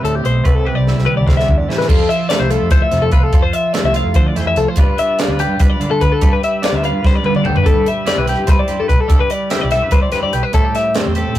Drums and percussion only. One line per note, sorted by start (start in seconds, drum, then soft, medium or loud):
0.05 closed hi-hat medium
0.25 closed hi-hat medium
0.45 kick loud
0.45 closed hi-hat medium
0.66 high tom medium
0.87 snare medium
0.98 snare medium
1.07 mid tom medium
1.28 kick loud
1.28 snare medium
1.39 snare medium
1.48 kick medium
1.70 snare medium
1.81 snare medium
1.89 kick loud
1.89 crash loud
2.10 closed hi-hat medium
2.30 snare loud
2.30 closed hi-hat loud
2.51 closed hi-hat medium
2.71 kick loud
2.71 closed hi-hat loud
2.91 snare soft
2.91 closed hi-hat medium
3.11 kick medium
3.11 closed hi-hat medium
3.33 kick loud
3.33 closed hi-hat medium
3.53 closed hi-hat medium
3.74 snare loud
3.74 closed hi-hat medium
3.94 closed hi-hat medium
4.14 kick loud
4.14 closed hi-hat medium
4.36 snare soft
4.36 closed hi-hat medium
4.56 closed hi-hat medium
4.76 kick loud
4.76 closed hi-hat loud
4.98 closed hi-hat medium
5.19 snare loud
5.19 closed hi-hat loud
5.39 closed hi-hat medium
5.59 kick loud
5.59 closed hi-hat loud
5.81 closed hi-hat medium
6.01 kick medium
6.01 closed hi-hat medium
6.21 kick loud
6.21 closed hi-hat loud
6.43 closed hi-hat medium
6.63 snare loud
6.63 closed hi-hat medium
6.84 closed hi-hat medium
7.05 kick loud
7.05 snare medium
7.24 high tom medium
7.35 mid tom medium
7.45 mid tom loud
7.56 floor tom medium
7.66 kick loud
7.66 closed hi-hat medium
7.86 closed hi-hat medium
8.07 snare loud
8.07 closed hi-hat medium
8.27 closed hi-hat medium
8.47 kick loud
8.47 snare soft
8.47 closed hi-hat loud
8.68 closed hi-hat medium
8.89 kick medium
8.89 closed hi-hat medium
9.10 kick loud
9.10 closed hi-hat loud
9.30 closed hi-hat medium
9.50 snare loud
9.50 closed hi-hat loud
9.71 snare soft
9.71 closed hi-hat medium
9.91 kick loud
9.91 closed hi-hat medium
10.12 snare soft
10.12 closed hi-hat medium
10.33 closed hi-hat medium
10.53 kick loud
10.53 closed hi-hat medium
10.75 snare soft
10.75 closed hi-hat medium
10.95 snare loud
10.95 closed hi-hat medium
11.15 closed hi-hat medium
11.35 closed hi-hat medium